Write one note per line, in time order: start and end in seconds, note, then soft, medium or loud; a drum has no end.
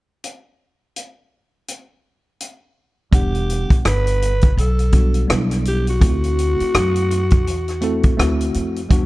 0.24 closed hi-hat medium
0.96 closed hi-hat medium
1.68 closed hi-hat medium
2.40 closed hi-hat medium
3.11 3.68 E1 medium
3.11 4.32 G3 medium
3.11 4.32 B3 medium
3.11 4.33 D4 medium
3.11 3.82 G4 medium
3.11 4.33 F#5 medium
3.11 kick medium
3.11 closed hi-hat medium
3.35 closed hi-hat soft
3.50 closed hi-hat medium
3.70 muted upright bass stroke soft
3.70 kick medium
3.70 closed hi-hat medium
3.85 4.54 G1 medium
3.85 4.54 B4 loud
3.85 cross-stick loud
3.85 closed hi-hat medium
4.07 closed hi-hat medium
4.22 closed hi-hat medium
4.41 kick medium
4.41 closed hi-hat medium
4.57 5.26 B1 medium
4.57 5.27 A4 medium
4.57 closed hi-hat medium
4.79 closed hi-hat soft
4.92 5.24 G3 medium
4.92 5.24 B3 medium
4.92 5.24 D4 medium
4.92 5.25 F#4 medium
4.92 kick medium
4.92 closed hi-hat medium
5.14 closed hi-hat soft
5.27 5.99 B1 medium
5.27 5.90 G3 medium
5.27 5.90 B3 medium
5.27 5.91 D4 medium
5.27 5.91 E4 medium
5.27 cross-stick loud
5.27 closed hi-hat medium
5.51 cross-stick soft
5.51 closed hi-hat medium
5.65 5.87 G4 loud
5.65 closed hi-hat medium
5.87 8.52 F#4 loud
5.87 closed hi-hat soft
6.00 6.57 D2 loud
6.00 7.21 A3 medium
6.00 7.21 C4 medium
6.00 7.22 E4 medium
6.00 6.10 F4 medium
6.00 kick medium
6.00 closed hi-hat loud
6.10 7.25 F#4 medium
6.24 closed hi-hat soft
6.39 closed hi-hat medium
6.60 muted upright bass stroke soft
6.60 closed hi-hat medium
6.74 7.47 F#2 medium
6.74 cross-stick loud
6.74 closed hi-hat medium
6.96 closed hi-hat medium
7.11 closed hi-hat medium
7.30 kick medium
7.30 closed hi-hat medium
7.47 8.15 E2 medium
7.47 closed hi-hat medium
7.68 cross-stick soft
7.68 closed hi-hat soft
7.81 8.13 A3 medium
7.81 8.13 C4 medium
7.81 8.13 E4 medium
7.81 8.14 A4 medium
7.81 closed hi-hat medium
8.03 kick medium
8.03 closed hi-hat medium
8.17 8.53 D2 medium
8.17 8.80 A3 medium
8.17 8.80 C4 medium
8.17 8.80 E4 medium
8.17 8.81 F#4 medium
8.17 cross-stick loud
8.17 closed hi-hat medium
8.41 closed hi-hat medium
8.54 8.89 F2 medium
8.54 closed hi-hat medium
8.76 closed hi-hat soft
8.89 9.06 E2 medium
8.89 9.06 G3 medium
8.89 9.06 B3 medium
8.89 9.06 D4 medium
8.89 9.06 F#4 medium
8.89 kick loud
8.89 closed hi-hat medium